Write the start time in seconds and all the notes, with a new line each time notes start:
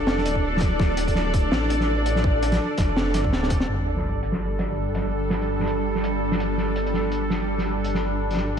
Already playing: F1 D4 A4 D5
0.07 snare
0.18 snare
0.25 D1, closed hi-hat
0.35 kick
0.57 snare, closed hi-hat
0.61 kick
0.80 D1, kick, snare
0.97 D1, closed hi-hat
1.08 kick, closed hi-hat
1.15 snare
1.34 kick, closed hi-hat
1.52 A1, snare
1.70 closed hi-hat
1.80 snare
2.06 closed hi-hat
2.16 snare
2.24 kick
2.43 closed hi-hat
2.52 snare, closed hi-hat
2.78 F1, kick, snare, closed hi-hat
2.97 snare
3.14 G1, snare, closed hi-hat
3.24 kick
3.32 D1, snare
3.43 snare
3.50 kick, closed hi-hat
3.60 snare
3.68 G1 G3 D4 A4, sub drop
3.87 closed hi-hat
3.97 snare, closed hi-hat
4.03 closed hi-hat
4.09 closed hi-hat
4.23 closed hi-hat
4.32 snare
4.59 snare, closed hi-hat
4.95 snare, closed hi-hat
5.30 snare, closed hi-hat
5.42 closed hi-hat
5.60 snare
5.61 snare
5.64 snare
5.66 snare, closed hi-hat
5.95 snare
6.04 closed hi-hat
6.32 snare
6.40 closed hi-hat
6.58 snare
6.76 closed hi-hat
6.86 closed hi-hat
6.94 snare
7.12 closed hi-hat
7.30 snare
7.58 snare
7.84 closed hi-hat
7.94 snare
8.31 snare, closed hi-hat
8.33 snare
8.35 snare
8.37 snare